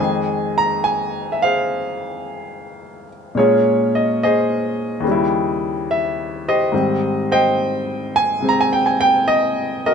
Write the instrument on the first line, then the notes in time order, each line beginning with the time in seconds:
grand piano
Already playing: C5 D#5 G#5
0.00 F2 D#3 G#3 G#4
0.58 A#5
0.84 G#5
1.32 E5
1.42 G#4 C5 F5
3.35 A#2 G#3 A#3 F4 C#5
3.39 C#4 G#4
3.95 D#5
4.23 G#4 C5 D#5
5.00 D#2 C#3
5.07 G3 E4
5.91 E5
6.48 G4 C5 D#5
6.72 G#2 D#3 G3 C4
7.32 C5 D#5 G5
8.16 G#5
8.41 C3 G#3 C4
8.49 A#5
8.61 G#5
8.73 G5
8.86 G#5
9.01 G5
9.28 D#5
9.86 F#4 A#4 D#5